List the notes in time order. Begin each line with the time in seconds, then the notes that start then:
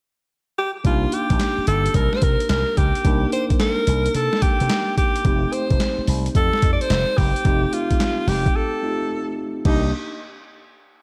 0.58 G4
0.84 C2 A#3 D4 D#4 F4 G4, kick, closed hi-hat
1.12 G4, closed hi-hat
1.30 A#1, kick, closed hi-hat
1.39 snare, clap, closed hi-hat
1.58 muted slap bass stroke
1.67 G1 A4, closed hi-hat
1.86 closed hi-hat
1.94 C2 A#4, kick, closed hi-hat
2.13 C5, snare
2.22 C3 A#4, kick, closed hi-hat
2.40 closed hi-hat
2.49 C2 A#4, snare, clap, closed hi-hat
2.77 C#2 G4, kick, closed hi-hat
2.95 closed hi-hat
3.05 C2 A#3 D4 D#4 A#4, kick, closed hi-hat
3.32 C5, closed hi-hat
3.50 muted slap bass stroke, kick, closed hi-hat
3.60 A#4, snare, clap, closed hi-hat
3.87 C2, closed hi-hat
4.06 closed hi-hat
4.15 C3 A4, closed hi-hat
4.33 snare
4.42 G4, muted slap bass stroke, kick, closed hi-hat
4.60 C3, closed hi-hat
4.69 snare, clap, closed hi-hat
4.98 G4, kick, closed hi-hat
5.16 closed hi-hat
5.25 F1 G#3 C4 D#4 G4, kick, closed hi-hat
5.31 A3
5.53 C5, closed hi-hat
5.70 F1, kick, closed hi-hat
5.80 snare, clap, closed hi-hat
5.98 muted slap bass stroke
6.07 C2, open hi-hat
6.26 closed hi-hat
6.35 F2 A4, kick, closed hi-hat
6.53 snare
6.62 F2, kick, closed hi-hat
6.72 D5
6.81 C5, closed hi-hat
6.90 F1, snare, clap, closed hi-hat
7.17 F#1 G4, kick, open hi-hat
7.36 closed hi-hat
7.45 F1 A3 C4 D#4 G4, kick, closed hi-hat
7.73 F4, closed hi-hat
7.91 muted slap bass stroke, kick, closed hi-hat
8.00 snare, clap, closed hi-hat
8.27 F1 G4, snare, open hi-hat
8.46 kick, closed hi-hat
8.56 A4
8.83 A3 C4 D#4 F4
8.90 G4
9.65 C2 A#3 D4 D#4 G4, kick, crash